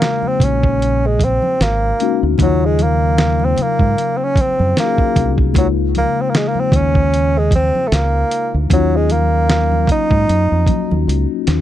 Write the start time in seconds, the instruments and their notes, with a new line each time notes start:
Already playing: tine electric piano C#3 G#3 A#3 D#4 F#4, bassoon A#3
0.02 snare, closed hi-hat, muted conga
0.22 high conga
0.28 bassoon C4
0.40 fingered electric bass A#1, bassoon C#4, kick, closed hi-hat, muted conga, low conga
0.63 kick
0.79 closed hi-hat, muted conga
1.06 bassoon G#3
1.19 kick, closed hi-hat, muted conga, high conga
1.24 bassoon C4
1.42 high conga
1.60 fingered electric bass G#1, bassoon A#3, snare, closed hi-hat
1.99 tine electric piano G#3 A#3 C#4 D#4 F#4, closed hi-hat, muted conga
2.23 fingered electric bass D2
2.38 fingered electric bass D#2, tine electric piano C#3 F3 A#3, kick, closed hi-hat, muted conga, low conga
2.42 bassoon F#3, tine electric piano F#3 D#4 F4
2.65 bassoon G#3
2.79 bassoon A#3, closed hi-hat, high conga
3.18 snare, closed hi-hat, muted conga
3.40 high conga
3.45 bassoon C4
3.56 muted fingered electric bass stroke, closed hi-hat, muted conga, low conga
3.62 bassoon A#3
3.79 fingered electric bass G#2, kick
3.98 closed hi-hat
4.17 bassoon C4
4.24 bassoon C#4
4.36 muted fingered electric bass stroke, kick, closed hi-hat, high conga
4.41 bassoon C4
4.59 fingered electric bass F#2, high conga
4.76 tine electric piano F#3 A#3 C#4 D#4 F#4, bassoon A#3, snare, closed hi-hat, muted conga
4.85 tine electric piano G#4
4.98 kick
5.15 fingered electric bass C2, kick, closed hi-hat, muted conga
5.38 kick
5.53 fingered electric bass C#2, tine electric piano C#3 G#3 A#3, kick, closed hi-hat, muted conga, low conga
5.57 bassoon F#3, tine electric piano D#4 F4
5.95 bassoon A#3, closed hi-hat, muted conga, high conga
6.21 bassoon C4
6.30 bassoon A#3
6.34 bassoon G#3, snare, closed hi-hat, muted conga
6.48 bassoon A#3
6.55 high conga
6.60 bassoon C4
6.72 fingered electric bass D#2, kick, closed hi-hat, low conga
6.76 bassoon C#4
6.95 kick
7.14 closed hi-hat
7.38 bassoon G#3
7.51 kick, closed hi-hat, muted conga, high conga
7.55 bassoon C4
7.75 high conga
7.87 bassoon A3
7.92 fingered electric bass C#2, bassoon A#3, snare, closed hi-hat
8.31 closed hi-hat
8.54 fingered electric bass D2
8.69 fingered electric bass D#2, tine electric piano F3 A#3 C#4, kick, closed hi-hat, muted conga, low conga
8.73 bassoon F#3, tine electric piano F#3 D#4 F4
8.96 bassoon G#3
9.10 bassoon A#3, closed hi-hat, muted conga, high conga
9.49 snare, closed hi-hat
9.72 high conga
9.87 bassoon D#4, muted fingered electric bass stroke, kick, closed hi-hat, muted conga, low conga
10.11 fingered electric bass G#2, kick
10.28 fingered electric bass F#2, closed hi-hat, muted conga
10.52 fingered electric bass F2
10.66 tine electric piano F#3 A#3 C#4 D#4 F#4, kick, closed hi-hat, high conga
10.91 fingered electric bass D#2, high conga
11.08 fingered electric bass C#2, closed hi-hat
11.47 fingered electric bass D#2, snare, closed hi-hat, muted conga